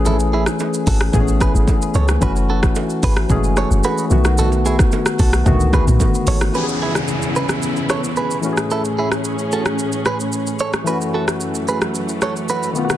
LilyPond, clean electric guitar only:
\new Staff \with { instrumentName = "Clean electric guitar" } { \time 4/4 \key fis \dorian \tempo 4 = 111 <e' a'>16 r16 <e' gis'>16 r8. <fis' a'>16 r8. <gis' b'>16 r8. <a' cis''>16 r16 | <fis' b'>16 r16 <fis' a'>16 r8. <gis' b'>16 r8. <a' cis''>16 r16 <fis' b'>8 r8 | <fis' a'>16 r16 <e' gis'>16 r8. <fis' a'>16 r8. <gis' b'>16 r8. <a' cis''>16 r16 | <gis' b'>16 r16 <e' gis'>16 r8. <gis' b'>16 r8. <a' cis''>16 r16 <gis' b'>8 r8 |
<e' a'>16 r16 <e' gis'>16 r8. <fis' a'>16 r8. <gis' b'>16 r8. <a' cis''>16 r16 | <fis' b'>16 r16 <fis' a'>16 r8. <gis' b'>16 r8. <a' cis''>16 r16 <fis' b'>8 r8 | }